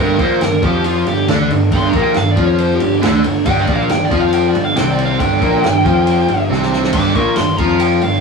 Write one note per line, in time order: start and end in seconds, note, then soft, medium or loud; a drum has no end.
0.00 0.17 G1 medium
0.00 0.17 G2 medium
0.00 0.18 G3 loud
0.00 0.19 A#4 medium
0.17 0.39 A#1 medium
0.17 0.39 A#2 medium
0.17 0.40 A#3 medium
0.17 0.41 C5 medium
0.17 kick loud
0.17 ride medium
0.41 0.61 G1 medium
0.41 0.58 G2 medium
0.41 0.62 A#4 medium
0.41 snare loud
0.41 ride medium
0.62 1.03 F2 loud
0.62 1.05 F3 medium
0.62 1.05 F4 loud
0.62 0.84 G4 medium
0.62 kick loud
0.62 ride medium
0.84 1.06 F4 medium
0.84 ride loud
1.06 1.26 G1 medium
1.06 1.23 G2 medium
1.06 1.28 G4 medium
1.06 ride medium
1.27 1.48 D2 medium
1.27 1.49 D3 medium
1.27 1.50 D4 loud
1.27 1.50 D4 medium
1.27 snare loud
1.27 ride medium
1.49 1.70 G1 medium
1.49 1.67 G2 medium
1.49 ride medium
1.71 1.92 G1 loud
1.71 1.93 G2 loud
1.71 1.93 G3 loud
1.71 1.86 C6 loud
1.71 kick loud
1.71 ride medium
1.89 2.02 A#5 medium
1.89 ride medium
1.93 2.14 A#1 medium
1.93 2.14 A#2 medium
1.93 2.15 A#3 medium
1.93 kick loud
2.01 2.16 G5 loud
2.14 2.35 G1 medium
2.14 2.32 G2 medium
2.14 2.31 F5 medium
2.14 snare loud
2.14 ride medium
2.31 2.45 D5 medium
2.36 2.78 F2 medium
2.36 2.80 F3 medium
2.36 2.80 F4 loud
2.36 kick loud
2.36 ride medium
2.45 2.60 C#5 loud
2.58 2.74 C5 medium
2.58 ride medium
2.75 2.95 G4 medium
2.80 3.01 G1 medium
2.80 2.98 G2 medium
2.80 ride medium
3.01 3.23 D2 loud
3.01 3.23 D3 loud
3.01 3.23 D4 loud
3.01 snare loud
3.01 ride loud
3.23 3.45 G1 medium
3.23 3.41 G2 medium
3.23 ride medium
3.45 3.66 G1 medium
3.45 3.67 G2 medium
3.45 3.67 G3 loud
3.45 3.60 G5 loud
3.45 kick loud
3.45 ride loud
3.60 3.74 D5 medium
3.66 3.88 A#1 medium
3.66 3.88 A#2 medium
3.66 3.89 A#3 medium
3.66 kick loud
3.66 ride medium
3.74 3.89 F5 medium
3.89 4.10 G1 medium
3.89 4.07 G2 medium
3.89 4.04 G5 medium
3.89 snare loud
3.89 ride medium
4.05 4.20 D5 medium
4.10 4.52 F2 medium
4.10 4.54 F3 medium
4.10 4.54 F4 loud
4.10 kick loud
4.10 ride medium
4.20 4.33 F5 medium
4.33 4.47 G5 loud
4.33 ride loud
4.48 4.64 D5 medium
4.54 4.75 G1 medium
4.54 4.72 G2 medium
4.54 ride medium
4.64 4.76 F5 medium
4.75 5.17 C2 loud
4.75 5.19 C3 medium
4.75 5.19 C4 loud
4.75 4.90 G5 medium
4.75 snare loud
4.75 ride loud
4.91 5.05 D5 medium
4.99 ride medium
5.05 5.19 F5 medium
5.19 5.40 G1 medium
5.19 5.40 G2 loud
5.19 5.41 G3 loud
5.19 6.46 G5 loud
5.19 kick loud
5.19 ride medium
5.41 5.62 A#1 medium
5.41 5.62 A#2 medium
5.41 5.63 A#3 loud
5.41 kick loud
5.41 ride medium
5.63 5.84 G1 medium
5.63 5.80 G2 medium
5.63 snare loud
5.63 ride medium
5.84 6.25 F2 loud
5.84 6.27 F3 medium
5.84 6.28 F4 loud
5.84 kick loud
5.84 ride medium
6.07 ride loud
6.28 6.48 G1 medium
6.28 6.45 G2 medium
6.28 ride medium
6.50 6.90 C2 medium
6.50 6.92 C3 loud
6.50 6.93 C4 medium
6.50 snare medium
6.62 snare medium
6.73 snare medium
6.84 snare medium
6.93 7.13 G1 medium
6.93 7.14 G2 medium
6.93 7.15 G3 loud
6.93 7.14 D6 loud
6.93 kick loud
6.93 ride medium
6.93 crash medium
7.15 7.35 A#1 medium
7.15 7.36 A#2 medium
7.15 7.36 A#3 medium
7.15 7.36 C#6 medium
7.15 kick loud
7.15 ride medium
7.36 7.57 G1 medium
7.36 7.54 G2 medium
7.36 7.57 C6 medium
7.36 snare loud
7.36 ride medium
7.58 7.99 F2 medium
7.58 8.01 F3 medium
7.58 8.01 F4 loud
7.58 7.79 A#5 loud
7.58 kick loud
7.58 ride medium
7.80 8.01 G5 loud
7.80 ride loud
8.02 8.21 G1 medium
8.02 8.19 G2 medium
8.02 8.21 F5 medium
8.02 ride medium